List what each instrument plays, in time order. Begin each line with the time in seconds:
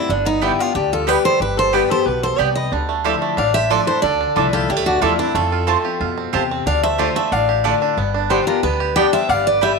0.08 upright bass G1, steel-string acoustic guitar G2 D4, resonator guitar played with a steel bar B3
0.25 resonator guitar played with a steel bar B3, steel-string acoustic guitar D#4
0.42 steel-string acoustic guitar D3 G3 B3 E4 G4, mandolin B3 G4 D5 G5, resonator guitar played with a steel bar B3
0.59 steel-string acoustic guitar B3 F4 G4, resonator guitar played with a steel bar D4
0.75 upright bass D2, steel-string acoustic guitar D3 G4, resonator guitar played with a steel bar D4
0.92 resonator guitar played with a steel bar F4, steel-string acoustic guitar A4
1.07 steel-string acoustic guitar D3 G3 B3 G4 B4, mandolin B3 G4 D5 G5, resonator guitar played with a steel bar G4
1.24 resonator guitar played with a steel bar A4, steel-string acoustic guitar C5
1.40 upright bass G1, steel-string acoustic guitar G2 B4, resonator guitar played with a steel bar G4
1.57 resonator guitar played with a steel bar A4, steel-string acoustic guitar C5
1.73 steel-string acoustic guitar D3 G3 B3 G4 B4, mandolin B3 G4 D5 G5, resonator guitar played with a steel bar G4
1.90 steel-string acoustic guitar B3 G4 C5, resonator guitar played with a steel bar A4
2.06 upright bass B1, steel-string acoustic guitar B2 B4, resonator guitar played with a steel bar G4
2.23 resonator guitar played with a steel bar A4, steel-string acoustic guitar C5
2.38 upright bass C2, steel-string acoustic guitar C3 D5, mandolin B3 G4 D5 G5, resonator guitar played with a steel bar B4
2.56 resonator guitar played with a steel bar B4, steel-string acoustic guitar D#5
2.72 upright bass D2, steel-string acoustic guitar D3, five-string banjo D4
2.89 five-string banjo A3
3.04 steel-string acoustic guitar F3 A3 D4 E4, mandolin F4 A4 E5 D6, five-string banjo G4
3.22 five-string banjo A3
3.37 upright bass A1, steel-string acoustic guitar A2 F5, five-string banjo D4, resonator guitar played with a steel bar D5
3.54 five-string banjo G4, resonator guitar played with a steel bar C5, steel-string acoustic guitar E5
3.70 steel-string acoustic guitar F3 A3 D4 E4 D5, five-string banjo D4, mandolin F4 A4 E5 D6, resonator guitar played with a steel bar A4
3.87 five-string banjo D4, steel-string acoustic guitar D4 E4 C5, resonator guitar played with a steel bar A4
4.02 upright bass D2, steel-string acoustic guitar D3 D5, five-string banjo D4, resonator guitar played with a steel bar A4
4.21 five-string banjo D4
4.36 upright bass C2, steel-string acoustic guitar F3 A3 D4 E4, five-string banjo D4, mandolin F4 A4 E5 D6
4.53 resonator guitar played with a steel bar F4, five-string banjo G4, steel-string acoustic guitar A4
4.69 upright bass D2, steel-string acoustic guitar A2 G4, five-string banjo G3, resonator guitar played with a steel bar E4
4.77 five-string banjo A3
4.86 five-string banjo D4, resonator guitar played with a steel bar D4, steel-string acoustic guitar F#4
5.01 upright bass E2, steel-string acoustic guitar F3 A3 D4 E4 F4, five-string banjo A3, resonator guitar played with a steel bar D4, mandolin F4 A4 E5 D6
5.18 resonator guitar played with a steel bar C4, steel-string acoustic guitar D4 E4, five-string banjo D4
5.34 upright bass F2, steel-string acoustic guitar F2 A4, five-string banjo A3, resonator guitar played with a steel bar F4
5.52 five-string banjo F4
5.67 steel-string acoustic guitar F3 A3 C4 F4, five-string banjo A3, mandolin C4 F4 C5 A5
5.84 steel-string acoustic guitar C4 F4, five-string banjo G4
6.00 upright bass F2, steel-string acoustic guitar B2, five-string banjo F4
6.18 five-string banjo C4
6.33 upright bass E2, steel-string acoustic guitar C3, mandolin C4 F4 C5 A5, five-string banjo G4
6.51 five-string banjo C4
6.66 upright bass D2, steel-string acoustic guitar D3 F5, five-string banjo D4, resonator guitar played with a steel bar D5
6.83 five-string banjo A3, resonator guitar played with a steel bar C5, steel-string acoustic guitar E5
6.98 steel-string acoustic guitar D3 A3 D4 F4 C5, mandolin A3 F4 D5 A5, five-string banjo G4, resonator guitar played with a steel bar A4
7.16 five-string banjo A3, steel-string acoustic guitar D4 F4 E5, resonator guitar played with a steel bar C5
7.32 upright bass A1, steel-string acoustic guitar A2 F5, five-string banjo D4, resonator guitar played with a steel bar D5
7.49 five-string banjo G4
7.64 steel-string acoustic guitar D3 A3 D4 F4, mandolin A3 F4 D5 A5, five-string banjo D4
7.82 five-string banjo D4
7.97 upright bass G1, steel-string acoustic guitar G2, five-string banjo B3
8.14 five-string banjo D4
8.30 steel-string acoustic guitar D3 G3 B3 G4 C5, five-string banjo G3, mandolin B3 G4 D5 G5, resonator guitar played with a steel bar G4
8.47 steel-string acoustic guitar B3 G4 A#4, five-string banjo D4, resonator guitar played with a steel bar F4
8.63 upright bass D2, steel-string acoustic guitar D3 B4, five-string banjo B3, resonator guitar played with a steel bar G4
8.80 five-string banjo G4
8.96 steel-string acoustic guitar D3 G3 B3 G4 G5, mandolin B3 G4 D5 G5, five-string banjo D4, resonator guitar played with a steel bar D5
9.13 five-string banjo G3, resonator guitar played with a steel bar C5, steel-string acoustic guitar E5
9.29 upright bass G1, steel-string acoustic guitar G2 F5, five-string banjo B3, resonator guitar played with a steel bar D5
9.47 resonator guitar played with a steel bar B4, steel-string acoustic guitar D5
9.61 steel-string acoustic guitar D3 G3 B3 G4 E5, five-string banjo G3, mandolin B3 G4 D5 G5, resonator guitar played with a steel bar B4